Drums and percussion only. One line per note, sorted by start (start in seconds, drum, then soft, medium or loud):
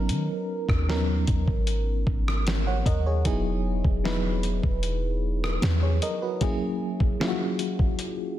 0.09 closed hi-hat medium
0.69 kick loud
0.69 cross-stick medium
0.90 snare loud
1.27 kick loud
1.27 closed hi-hat medium
1.48 kick medium
1.67 closed hi-hat medium
2.07 kick medium
2.28 cross-stick medium
2.47 snare loud
2.47 closed hi-hat medium
2.86 kick loud
2.86 closed hi-hat medium
3.25 kick loud
3.25 closed hi-hat medium
3.84 kick medium
4.05 snare loud
4.43 closed hi-hat medium
4.63 kick medium
4.83 closed hi-hat medium
5.44 cross-stick medium
5.62 snare loud
5.62 closed hi-hat medium
6.02 closed hi-hat medium
6.41 kick loud
6.41 closed hi-hat medium
7.00 kick medium
7.21 snare loud
7.59 closed hi-hat medium
7.79 kick medium
7.99 closed hi-hat medium